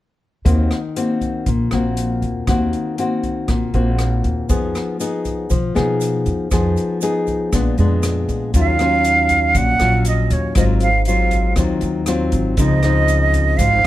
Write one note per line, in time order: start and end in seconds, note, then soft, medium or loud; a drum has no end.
0.45 0.69 D#2 medium
0.45 1.44 D#3 medium
0.45 0.78 A#3 medium
0.45 0.78 C4 soft
0.45 0.78 F#4 soft
0.45 kick medium
0.45 closed hi-hat soft
0.71 cross-stick medium
0.71 closed hi-hat soft
0.96 1.46 A#3 soft
0.96 1.47 C4 medium
0.96 1.47 F#4 medium
0.96 closed hi-hat soft
1.21 kick soft
1.21 closed hi-hat soft
1.46 1.70 A#1 medium
1.46 2.45 A#2 soft
1.46 kick medium
1.46 closed hi-hat soft
1.71 2.19 A#1 medium
1.71 2.44 A#3 medium
1.71 2.44 C4 medium
1.71 2.44 F#4 medium
1.71 cross-stick medium
1.71 closed hi-hat soft
1.97 closed hi-hat soft
2.22 2.46 D#2 medium
2.22 kick soft
2.22 closed hi-hat soft
2.47 2.71 D#2 medium
2.47 3.46 D#3 medium
2.47 2.94 A#3 medium
2.47 2.94 C4 soft
2.47 2.95 F#4 medium
2.47 kick medium
2.47 cross-stick medium
2.47 closed hi-hat soft
2.73 closed hi-hat soft
2.98 3.70 A#3 soft
2.98 3.70 C4 medium
2.98 3.70 F#4 medium
2.98 closed hi-hat soft
3.23 kick soft
3.23 closed hi-hat soft
3.48 3.72 A#1 medium
3.48 4.47 A#2 medium
3.48 kick medium
3.48 cross-stick medium
3.48 closed hi-hat soft
3.74 4.21 A#1 medium
3.74 4.46 A#3 medium
3.74 4.46 C4 medium
3.74 4.46 F#4 medium
3.74 closed hi-hat soft
3.99 cross-stick medium
3.99 closed hi-hat soft
4.24 4.48 D#2 medium
4.24 kick soft
4.24 closed hi-hat soft
4.49 4.73 F2 medium
4.49 5.48 F3 soft
4.49 4.96 B3 medium
4.49 4.96 D#4 soft
4.49 4.96 G#4 medium
4.49 kick medium
4.49 closed hi-hat soft
4.49 shaker medium
4.75 cross-stick medium
4.75 closed hi-hat soft
4.75 shaker soft
5.00 5.50 B3 medium
5.00 5.51 D#4 medium
5.00 5.51 G#4 medium
5.00 closed hi-hat soft
5.00 shaker medium
5.25 kick soft
5.25 closed hi-hat soft
5.25 shaker soft
5.50 5.74 B2 medium
5.50 6.49 F3 soft
5.50 kick medium
5.50 closed hi-hat soft
5.50 shaker medium
5.75 6.23 B2 medium
5.75 6.47 B3 medium
5.75 6.47 D#4 medium
5.75 6.48 G#4 medium
5.75 cross-stick medium
5.75 closed hi-hat soft
5.75 shaker soft
6.01 closed hi-hat soft
6.01 shaker medium
6.26 6.50 F2 medium
6.26 kick soft
6.26 closed hi-hat soft
6.26 shaker soft
6.51 6.75 F2 loud
6.51 7.50 F3 medium
6.51 6.98 B3 soft
6.51 6.99 D#4 medium
6.51 6.99 G#4 medium
6.51 kick medium
6.51 cross-stick medium
6.51 closed hi-hat soft
6.51 shaker medium
6.77 closed hi-hat soft
6.77 shaker soft
7.01 7.51 B3 soft
7.01 7.51 D#4 medium
7.01 7.51 G#4 medium
7.01 closed hi-hat soft
7.01 shaker medium
7.27 kick soft
7.27 closed hi-hat soft
7.27 shaker soft
7.53 7.76 A#1 medium
7.53 8.52 A#2 medium
7.53 7.74 G#3 soft
7.53 7.75 B3 medium
7.53 7.75 D4 medium
7.53 kick medium
7.53 cross-stick medium
7.53 closed hi-hat soft
7.53 shaker medium
7.78 8.25 F2 medium
7.78 8.50 G#3 medium
7.78 8.51 B3 medium
7.78 8.51 D4 medium
7.78 closed hi-hat soft
7.78 shaker soft
8.03 cross-stick medium
8.03 closed hi-hat soft
8.03 shaker medium
8.29 8.52 A#1 medium
8.29 kick soft
8.29 closed hi-hat soft
8.29 shaker soft
8.54 9.51 D#2 loud
8.54 9.53 D#3 medium
8.54 8.76 F#3 soft
8.54 8.76 C#4 soft
8.54 8.76 F4 medium
8.54 kick medium
8.54 closed hi-hat medium
8.54 shaker medium
8.60 9.59 F5 loud
8.79 9.77 F#3 medium
8.79 9.77 C#4 medium
8.79 9.77 F4 medium
8.79 cross-stick medium
8.79 closed hi-hat soft
8.79 shaker soft
9.04 closed hi-hat soft
9.04 shaker medium
9.29 kick soft
9.29 closed hi-hat soft
9.29 shaker soft
9.55 9.78 A#1 medium
9.55 10.54 A#2 medium
9.55 10.06 F#5 loud
9.55 kick medium
9.55 closed hi-hat medium
9.55 shaker medium
9.79 10.27 A#1 medium
9.79 10.52 F#3 medium
9.79 10.52 C#4 medium
9.79 10.52 F4 medium
9.79 cross-stick medium
9.79 closed hi-hat soft
9.79 shaker soft
10.05 10.34 D#5 medium
10.05 closed hi-hat soft
10.05 shaker medium
10.30 10.54 D#2 medium
10.30 10.57 C#5 medium
10.30 kick soft
10.30 closed hi-hat soft
10.30 shaker soft
10.55 11.53 G#1 loud
10.55 11.55 G#2 medium
10.55 10.89 F#3 medium
10.55 10.89 C4 medium
10.55 10.89 F4 medium
10.55 10.64 D#5 medium
10.55 kick medium
10.55 cross-stick medium
10.55 closed hi-hat medium
10.55 shaker medium
10.80 11.05 F5 medium
10.80 closed hi-hat soft
10.80 shaker soft
11.05 11.53 F#3 medium
11.05 11.54 C4 soft
11.05 11.54 F4 medium
11.05 11.53 F5 medium
11.05 closed hi-hat soft
11.05 shaker medium
11.31 kick soft
11.31 closed hi-hat soft
11.31 shaker soft
11.56 11.80 D#2 medium
11.56 12.55 D#3 medium
11.56 12.04 F#3 medium
11.56 12.04 C4 medium
11.56 12.04 F4 medium
11.56 kick medium
11.56 cross-stick medium
11.56 closed hi-hat soft
11.56 shaker medium
11.81 12.29 D#2 medium
11.81 closed hi-hat soft
11.81 shaker soft
12.06 12.56 F#3 medium
12.06 12.56 C4 medium
12.06 12.56 F4 medium
12.06 cross-stick medium
12.06 closed hi-hat soft
12.06 shaker medium
12.32 12.56 G#1 medium
12.32 kick soft
12.32 closed hi-hat soft
12.32 shaker soft
12.57 13.55 C#2 loud
12.57 13.57 C#3 medium
12.57 12.80 F3 soft
12.57 12.80 C4 medium
12.57 12.80 D#4 medium
12.57 13.59 D#5 loud
12.57 kick medium
12.57 closed hi-hat medium
12.57 shaker medium
12.83 13.81 F3 medium
12.83 13.81 C4 medium
12.83 13.81 D#4 medium
12.83 cross-stick medium
12.83 closed hi-hat soft
12.83 shaker soft
13.08 closed hi-hat soft
13.08 shaker medium
13.33 kick soft
13.33 closed hi-hat soft
13.33 shaker soft
13.57 13.82 G#1 loud
13.57 13.87 G#2 medium
13.57 13.87 F5 loud
13.57 kick medium
13.57 closed hi-hat medium
13.57 shaker medium